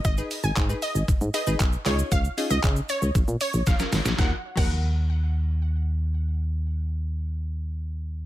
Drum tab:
CC |----------------|----------------|---x------------|----------------|
HH |x-o-x-o-x-o-x-o-|x-o-x-o-x-o-x-o-|----------------|----------------|
SH |xxxxxxxxxxxxxxxx|xxxxxxxxxxxxxxxx|----------------|----------------|
CP |----x-------x-x-|----x-----------|----------------|----------------|
SD |----------------|------------oooo|o---------------|----------------|
BD |o---o---o---o---|o---o---o---o---|o--o------------|----------------|